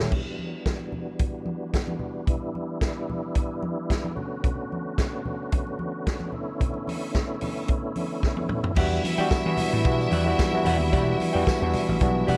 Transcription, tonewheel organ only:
0.10 E3 G3 B3 D4 F#4
2.28 E4
4.15 D3 A3 C#4 F#4
6.34 E4

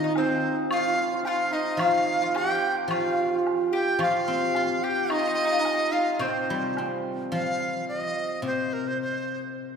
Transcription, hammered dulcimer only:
Already playing: C4 F4
0.03 D#4
0.16 C4
0.71 F4
0.79 F4
0.87 F4
0.94 F4
1.01 F4
1.07 F4
1.13 F4
1.23 F4
1.51 D#4
1.78 F4
2.21 F4
2.36 G4
2.90 F4
2.98 F4
3.06 F4
3.13 F4
3.20 F4
3.27 F4
3.33 F4
3.71 G4
4.01 F4
4.55 F4
4.81 G4
5.10 D#4
5.93 F4
6.22 C4

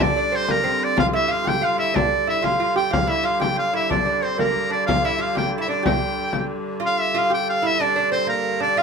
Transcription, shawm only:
0.03 D5
0.35 C5
0.51 A#4
0.84 D5
0.99 F5
1.15 E5
1.31 F5
1.48 G5
1.64 F5
1.79 E5
1.95 D5
2.29 E5
2.44 F5
2.77 G5
2.93 F5
3.09 E5
3.25 F5
3.41 G5
3.59 F5
3.76 E5
3.91 D5
4.24 C5
4.39 A#4
4.72 D5
4.87 F5
5.05 E5
5.21 F5
5.38 G5
5.61 E5
5.69 D5
5.86 G5
6.86 F5
7.00 E5
7.18 F5
7.34 G5
7.50 F5
7.66 E5
7.82 D5
8.12 C5
8.29 A#4
8.62 D5
8.78 F5

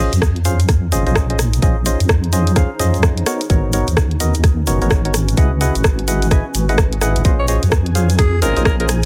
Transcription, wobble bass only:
0.13 F2
0.92 G#1
1.06 A#1
1.62 A#1
2.00 F2
2.80 F2
3.50 G#1
3.88 D#2
4.67 F#1
4.82 G#1
5.37 C#2
5.75 G#1
6.55 G#1
7.16 G#1
7.25 A#1
7.63 F2
8.42 G#1
8.57 A#1

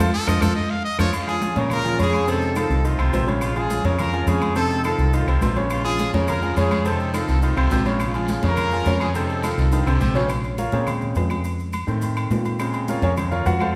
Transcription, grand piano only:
0.27 F4 A4 C5
0.41 F4 A4 C5
0.99 F4 A4 C5
1.27 F3 F4 G#4
1.42 F3 F4 G#4
1.56 C#3 C#4 C#5
1.85 F3 F4 G#4
1.99 C#3 C#4 C#5
2.28 C3 C4 C5
2.56 D#3 D#4 F4
2.85 D#3 D#4 F4
2.99 C3 C4 C5
3.13 C3 C4 C5
3.27 C#3 C#4 C#5
3.56 F3 F4 G#4
3.70 F3 F4 G#4
3.85 C#3 C#4 C#5
4.13 F3 F4 G#4
4.27 C#3 C#4 C#5
4.56 C3 C4 C5
4.85 D#3 D#4 F4
5.13 D#3 D#4 F4
5.27 C3 C4 C5
5.42 C3 C4 C5
5.56 C#3 C#4 C#5
5.85 F3 F4 G#4
5.99 F3 F4 G#4
6.14 C#3 C#4 C#5
6.42 F3 F4 G#4
6.57 C#3 C#4 C#5
6.86 C3 C4 C5
7.13 D#3 D#4 F4
7.43 D#3 D#4 F4
7.57 C3 C4 C5
7.72 C3 C4 C5
7.86 C#3 C#4 C#5
8.15 F3 F4 G#4
8.30 F3 F4 G#4
8.44 C#3 C#4 C#5
8.72 F3 F4 G#4
8.87 C#3 C#4 C#5
9.15 C3 C4 C5
9.44 D#3 D#4 F4
9.73 D#3 D#4 F4
9.86 C3 C4 C5
10.01 C3 C4 C5
10.15 C#3 C#4 C#5
10.59 F4 A#4 C#5 F5
10.72 C#3 G#3 C4 C#4 G#4 A#4 C#5
11.87 D#3 A3 C4
12.60 C#3 G#3 C4
12.89 F4 A#4 C#5 F5
13.03 C#4 G#4 A#4 C#5
13.17 C#3 G#3 C4
13.31 F4 A#4 C#5 F5
13.46 F#4 F#5
13.61 F4 A4 C5 F5

